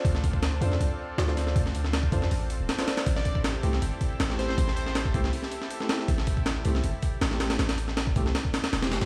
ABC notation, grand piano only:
X:1
M:4/4
L:1/16
Q:1/4=159
K:Aphr
V:1 name="Grand piano"
z6 [DFAc] z6 [DFAc] [DFAc]2 | z6 [DFAc] z6 [DFAc] [DFAc]2 | z6 [A,CEG] z6 [A,CEG] [A,CEG]2 | z6 [A,CEG] z6 [A,CEG] [A,CEG]2 |
z6 [A,CEG] z6 [A,CEG] [A,CEG]2 | z6 [A,CEG] z6 [A,CEG] [A,CEG]2 |]